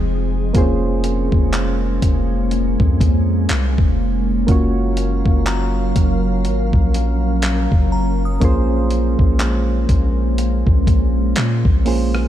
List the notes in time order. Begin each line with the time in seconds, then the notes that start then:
Already playing: F1 F3 G#3 C4 D#4 G#4 C5 D#5
0.53 F1 G#3 A#3 C4 C#4 F4 G#4, kick, closed hi-hat
0.58 C#4 C5
1.04 closed hi-hat
1.32 F1, kick
1.53 clap, closed hi-hat
2.02 F1, kick, closed hi-hat
2.51 closed hi-hat
2.80 F2, kick
3.01 kick, closed hi-hat
3.49 C2, clap, closed hi-hat
3.78 F1, kick
4.47 F#1 F#3 A#3 C#4 F4 F#4 A#4 F5, kick, closed hi-hat
4.51 C#5
4.97 closed hi-hat
5.26 F#1, kick
5.46 A#5, clap, closed hi-hat
5.96 F#1, kick, closed hi-hat
6.45 G#1, closed hi-hat
6.73 A#1, kick
6.94 closed hi-hat
7.42 clap, closed hi-hat
7.72 F#1, kick
7.92 A#5
8.25 D#6
8.40 A#1 G#3 A#3 C#4 F4 G#4, kick, closed hi-hat
8.45 C5
8.91 closed hi-hat
9.19 A#1, kick
9.40 clap, closed hi-hat
9.89 A#1, kick, closed hi-hat
10.38 closed hi-hat
10.67 A#1, kick
10.87 kick, closed hi-hat
11.36 A#2, clap, closed hi-hat
11.65 A#1, kick
11.85 A#3 C#4 F4 G#4 C5, open hi-hat
12.15 cross-stick